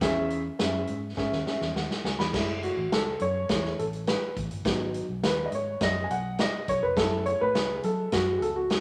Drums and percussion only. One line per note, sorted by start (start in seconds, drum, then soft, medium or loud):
0.01 kick loud
0.01 snare loud
0.01 closed hi-hat medium
0.30 closed hi-hat medium
0.59 snare loud
0.59 closed hi-hat medium
0.87 closed hi-hat medium
1.17 kick medium
1.17 snare medium
1.32 snare medium
1.47 snare medium
1.61 snare medium
1.76 snare medium
1.91 snare medium
2.05 snare medium
2.20 snare loud
2.33 kick loud
2.33 snare loud
2.33 crash medium
2.63 closed hi-hat medium
2.92 snare loud
2.92 closed hi-hat medium
3.20 closed hi-hat medium
3.49 kick medium
3.49 snare loud
3.49 closed hi-hat medium
3.65 snare soft
3.79 closed hi-hat medium
3.93 closed hi-hat soft
4.07 snare loud
4.07 closed hi-hat medium
4.36 kick medium
4.36 closed hi-hat medium
4.51 closed hi-hat medium
4.65 kick loud
4.65 snare loud
4.65 closed hi-hat medium
4.94 closed hi-hat medium
5.23 snare loud
5.23 closed hi-hat medium
5.52 closed hi-hat medium
5.81 kick medium
5.81 snare loud
5.81 closed hi-hat medium
6.10 closed hi-hat medium
6.38 snare loud
6.38 closed hi-hat medium
6.68 kick medium
6.68 closed hi-hat medium
6.97 kick loud
6.97 snare loud
6.97 closed hi-hat medium
7.26 closed hi-hat medium
7.55 snare loud
7.55 closed hi-hat medium
7.83 closed hi-hat medium
8.12 kick medium
8.12 snare loud
8.12 closed hi-hat medium
8.42 closed hi-hat medium
8.70 snare loud
8.70 closed hi-hat medium